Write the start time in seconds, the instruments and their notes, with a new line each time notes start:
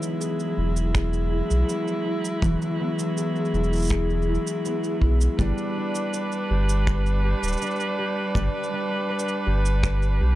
Already playing: harp E3 B3 C#4 D#4 G#4, string quartet F#3 G#3 E4
0.02 cabasa
0.21 harp G#4, cabasa
0.40 cabasa
0.58 sub bass E1, harp E4
0.76 cabasa
0.95 harp G#4, finger snap, kick, cabasa
1.13 cabasa
1.32 harp E4
1.51 sub bass B1, cabasa
1.69 harp B3, cabasa
1.88 cabasa
2.06 harp E4
2.25 cabasa
2.42 sub bass E1, harp E3, kick, cabasa
2.62 cabasa
2.80 harp B3
2.99 cabasa
3.17 harp G#4, cabasa
3.36 cabasa
3.45 cabasa
3.54 sub bass E1, harp E4, cabasa
3.64 cabasa
3.73 cabasa
3.75 cabasa
3.77 cabasa
3.80 cabasa
3.82 cabasa
3.84 cabasa
3.87 cabasa
3.89 harp G#4, finger snap, kick, cabasa
4.10 cabasa
4.22 cabasa
4.28 harp E4
4.35 cabasa
4.47 cabasa
4.65 harp B3, cabasa
4.84 cabasa
5.01 sub bass B1, harp E4, kick
5.21 cabasa
5.38 sub bass G1, string quartet G3 D4 B4, harp G3, kick, cabasa
5.58 cabasa
5.76 harp D4
5.95 cabasa
6.13 harp B4, cabasa
6.32 cabasa
6.50 sub bass G1, harp G4
6.69 cabasa
6.87 harp B4, finger snap, kick, cabasa
7.06 cabasa
7.24 harp G4
7.43 sub bass D1, cabasa
7.48 cabasa
7.52 cabasa
7.57 cabasa
7.61 harp D4, cabasa
7.66 cabasa
7.71 cabasa
7.76 cabasa
7.80 cabasa
7.98 harp G4
8.35 sub bass G1, harp G3, kick, cabasa
8.64 cabasa
8.72 harp D4
9.09 harp B4
9.19 cabasa
9.28 cabasa
9.46 sub bass G1, harp G4
9.65 cabasa
9.83 harp B4, finger snap, kick, cabasa
10.03 cabasa
10.21 sub bass B1, harp G4